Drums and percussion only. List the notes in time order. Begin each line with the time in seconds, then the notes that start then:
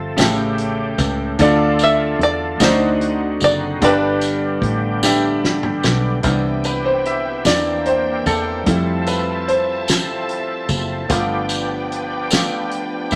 0.18 snare, closed hi-hat, tambourine
0.58 closed hi-hat
0.98 kick, closed hi-hat, tambourine
1.39 kick, closed hi-hat, tambourine
1.79 closed hi-hat, tambourine
2.21 closed hi-hat
2.60 snare, closed hi-hat, tambourine
3.01 closed hi-hat
3.40 closed hi-hat, tambourine
3.82 kick, closed hi-hat, tambourine
4.21 closed hi-hat, tambourine
4.62 kick, closed hi-hat
5.03 snare, tambourine
5.44 snare
5.63 mid tom
5.83 snare, tambourine
6.23 kick, closed hi-hat, tambourine
6.64 closed hi-hat, tambourine
7.05 closed hi-hat
7.45 snare, closed hi-hat, tambourine
7.86 closed hi-hat
8.26 kick, closed hi-hat, tambourine
8.66 kick, closed hi-hat, tambourine
9.06 closed hi-hat, tambourine
9.48 closed hi-hat
9.88 snare, closed hi-hat, tambourine
10.29 closed hi-hat
10.69 kick, closed hi-hat, tambourine
11.09 kick, closed hi-hat, tambourine
11.49 closed hi-hat, tambourine
11.92 closed hi-hat
12.31 snare, closed hi-hat, tambourine
12.71 closed hi-hat
13.11 kick, closed hi-hat, tambourine